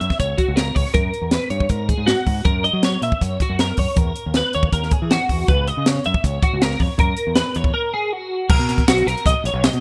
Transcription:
0.00 F#2 E5, closed hi-hat
0.10 kick, snare
0.19 C#2 C#5, kick, closed hi-hat
0.38 F#4, kick, closed hi-hat
0.48 C#2
0.56 A#4, snare, closed hi-hat
0.75 C#2 C#5, kick, open hi-hat
0.86 snare
0.94 F#2 A#4, kick, closed hi-hat
1.14 closed hi-hat
1.22 E2
1.31 B4, snare, closed hi-hat
1.50 G2 C#5, closed hi-hat
1.60 kick
1.69 G#2 A#4, kick, closed hi-hat
1.88 G#4, kick, closed hi-hat
1.98 G#2
2.06 F#4, snare, closed hi-hat
2.26 G#2, kick, open hi-hat
2.45 F#2 A#4, kick, closed hi-hat
2.64 D#5, closed hi-hat
2.73 F#3
2.83 C#5, snare, closed hi-hat
3.02 A#2 E5, closed hi-hat
3.12 kick
3.21 F#2 C#5, kick, closed hi-hat
3.40 F#4, kick, closed hi-hat
3.49 F#2
3.59 A#4, snare, closed hi-hat
3.77 F#2 C#5, kick, open hi-hat
3.96 E2 A#4, kick, closed hi-hat
4.16 closed hi-hat
4.26 D#2
4.34 B4, snare, closed hi-hat
4.53 D#2 C#5, closed hi-hat
4.63 kick
4.72 D#2 A#4, kick, closed hi-hat
4.83 snare
4.91 G#4, kick, closed hi-hat
5.02 E3
5.11 F#4, snare, closed hi-hat
5.29 E2, kick, open hi-hat
5.48 C#2 B4, kick, closed hi-hat
5.67 D#5, closed hi-hat
5.77 C#3
5.86 C#5, snare, closed hi-hat
6.04 F#2 E5, closed hi-hat
6.14 kick
6.24 C#2 C#5, kick, closed hi-hat
6.42 F#4, kick, closed hi-hat
6.53 C#2
6.62 A#4, snare, closed hi-hat
6.71 snare
6.79 F2 C#5, kick, open hi-hat
6.98 F#2 A#4, kick, closed hi-hat
7.17 closed hi-hat
7.27 E2
7.35 B4, snare, closed hi-hat
7.55 E2 C#5, closed hi-hat
7.64 kick
7.74 A#4
7.94 G#4
8.13 F#4
8.50 B1 A#4, kick, crash
8.59 B2
8.69 snare, closed hi-hat
8.78 kick, closed hi-hat
8.88 B1 F#4, snare, closed hi-hat
8.98 closed hi-hat
9.06 B1 A#4, snare, closed hi-hat
9.17 closed hi-hat
9.26 B1 D#5, kick, closed hi-hat
9.44 A#1 C#5, closed hi-hat
9.53 B1
9.64 D#5, snare, closed hi-hat
9.73 B2, closed hi-hat

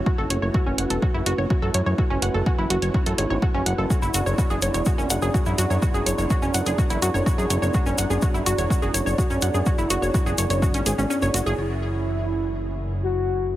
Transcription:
Already playing: F#2 A3 C#4 E4 F#4
0.06 F#4 B4, kick
0.18 F#1 A4
0.30 F#1 C#5, closed hi-hat
0.42 F#1 C#5
0.54 F#4, kick
0.66 F#1 C#4
0.78 F#1 F#5, closed hi-hat
0.90 E1 A4, closed hi-hat
1.02 F#4, kick
1.14 F#1 E4
1.26 F#1 F#4, closed hi-hat
1.38 F#1 C#5
1.50 F#4, kick
1.62 F#2 A4
1.74 F#2 C#5, closed hi-hat
1.86 F#2 C#5
1.98 F#4, kick
2.10 F#1 C#4
2.22 F#1 F#5, closed hi-hat
2.34 F#1 A4
2.46 F#4, kick
2.58 F#1 E4
2.70 F#1 F#4, closed hi-hat
2.82 F#1 C#5, closed hi-hat
2.94 F#4, kick
3.06 F#2 A4, closed hi-hat
3.18 G#1 C#5, closed hi-hat
3.30 G#1 C#5
3.42 F#4, kick
3.54 F#1 C#4
3.66 F#1 F#5, closed hi-hat
3.78 F#1 A4
3.90 B3 D4 F#4 G#4 D5, kick, shaker
4.02 F#1 E4, shaker
4.14 F#1 F#4, closed hi-hat, shaker
4.26 F#1 C#5, shaker
4.38 F#4, kick, shaker
4.50 F#1 G#4, shaker
4.62 F#1 C#5, closed hi-hat, shaker
4.74 E1 C#5, closed hi-hat, shaker
4.85 F#4, kick, shaker
4.98 F#1 C#4, shaker
5.10 F#1 F#5, closed hi-hat, shaker
5.22 F#1 G#4, shaker
5.34 F#4, kick, shaker
5.46 F#2 E4, shaker
5.58 F#2 F#4, closed hi-hat, shaker
5.70 F#2 C#5, shaker
5.82 F#4, kick, shaker
5.94 F#1 G#4, shaker
6.06 F#1 C#5, closed hi-hat, shaker
6.18 F#1 C#5, shaker
6.30 F#4, kick, shaker
6.42 F#1 C#4, shaker
6.54 F#1 F#5, closed hi-hat, shaker
6.66 F#1 G#4, closed hi-hat, shaker
6.78 F#4, kick, shaker
6.90 F#1 E4, closed hi-hat, shaker
7.02 F#2 F#4, closed hi-hat, shaker
7.14 F#1 C#5, shaker
7.26 F#4, kick, shaker
7.38 F#2 G#4, shaker
7.50 F#1 C#5, closed hi-hat, shaker
7.62 F#1 C#5, shaker
7.74 F#4, kick, shaker
7.86 F#1 C#4, shaker
7.98 F#1 F#5, closed hi-hat, shaker
8.10 F#1 G#4, shaker
8.22 F#4, kick, shaker
8.34 F#1 E4, shaker
8.46 F#1 F#4, closed hi-hat, shaker
8.58 E1 C#5, closed hi-hat, shaker
8.70 F#4, kick, shaker
8.82 F#1 G#4, shaker
8.94 F#1 C#5, closed hi-hat, shaker
9.06 F#1 C#5, shaker
9.18 F#4, kick, shaker
9.30 F#2 C#4, shaker
9.42 F#2 F#5, closed hi-hat, shaker
9.54 F#2 G#4, shaker
9.66 F#4, kick, shaker
9.78 F#1 E4, shaker
9.90 F#1 F#4, closed hi-hat, shaker
10.02 F#1 C#5, shaker
10.14 F#4, kick, shaker
10.26 F#1 G#4, shaker
10.38 F#1 C#5, closed hi-hat, shaker
10.50 F#1 C#5, closed hi-hat, shaker
10.62 F#4, kick, shaker
10.74 G#1 C#4, closed hi-hat, shaker
10.86 G#1 G#4, closed hi-hat, shaker
10.98 G#1 C#4, shaker
11.10 C#4, shaker
11.22 F#1 C#5, shaker
11.34 F#1 F#4, closed hi-hat, shaker
11.46 F#1 G#4, shaker
11.58 F#1 F#2 A3 C#4 E4 F#4 C#5, crash
13.02 F#4

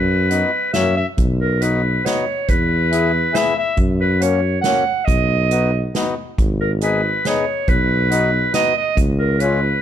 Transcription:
Already playing: F#2 B4
0.30 B3 D#4 F#4, closed hi-hat
0.73 F#2 A#3 C#4 F#4 E5, snare, closed hi-hat
0.97 E5
1.18 B1, kick, closed hi-hat
1.40 A#4
1.62 B3 D#4 F#4 B4, closed hi-hat
2.05 B3 D#4 F#4 C#5, snare, closed hi-hat
2.48 E2 B4, kick, closed hi-hat
2.92 B3 E4 G#4, closed hi-hat
3.33 B3 E4 G#4 E5, snare, closed hi-hat
3.58 E5
3.77 F#2, kick, closed hi-hat
4.01 B4
4.21 A#3 C#4 F#4 C#5, closed hi-hat
4.61 A#3 C#4 F#4 F#5, snare, closed hi-hat
5.05 B1 D#5, kick, closed hi-hat
5.51 B3 D#4 F#4, closed hi-hat
5.95 B3 D#4 F#4, snare, closed hi-hat
6.38 G#1, kick, closed hi-hat
6.61 A#4
6.81 B3 D#4 G#4 B4, closed hi-hat
7.25 B3 D#4 G#4 C#5, snare, closed hi-hat
7.68 B1 B4, kick, closed hi-hat
8.11 B3 D#4 F#4, closed hi-hat
8.53 B3 D#4 F#4 D#5, snare, closed hi-hat
8.77 D#5
8.97 C#2, kick, closed hi-hat
9.19 A#4
9.40 G#3 C#4 F4 B4, closed hi-hat

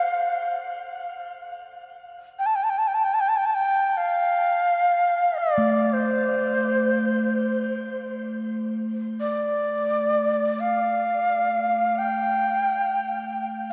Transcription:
Already playing: F5
2.39 G5
2.46 A5
2.55 G5
2.63 A5
2.70 G5
2.78 A5
2.88 G5
2.94 A5
3.04 G5
3.14 A5
3.20 G5
3.29 A5
3.37 G5
3.46 A5
3.54 G5
3.89 G5
3.97 F5
5.38 D5
5.58 A3
5.93 C5
9.20 D5
10.60 F5
11.98 G5

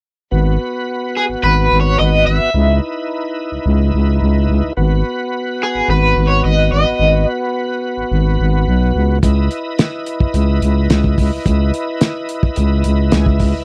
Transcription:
0.31 G#1 B3 F#4 B4
1.17 G#4
1.30 G#1
1.43 G#1 B4
1.72 G#1
1.81 C#5
1.99 G#1 D#5
2.27 G#1 E5
2.54 C#2 D#4 E4 B4
3.52 C#2
3.66 C#2
3.94 C#2
4.22 C#2
4.49 C#2
4.77 G#1 B3 F#4 B4
5.63 G#4
5.75 G#1
5.88 G#1 B4
6.16 G#1
6.27 C#5
6.44 G#1 D#5
6.72 G#1 D#5
7.00 G#1
7.98 G#1
8.12 G#1
8.40 G#1
8.67 B1
8.96 C#2
9.23 C#2 E4 B4 D#5, kick, closed hi-hat
9.51 closed hi-hat
9.79 snare, closed hi-hat
10.06 closed hi-hat
10.20 C#2, kick
10.34 C#2, closed hi-hat
10.62 C#2, closed hi-hat
10.90 C#2, snare, closed hi-hat
11.04 kick
11.18 C#2, kick, open hi-hat
11.46 C#2, kick, closed hi-hat
11.74 closed hi-hat
12.01 snare, closed hi-hat
12.29 closed hi-hat
12.43 C#2, kick
12.56 C#2, closed hi-hat
12.84 C#2, closed hi-hat
13.12 C#2 G#5, snare, closed hi-hat
13.26 E5, kick
13.40 C#2, kick, open hi-hat

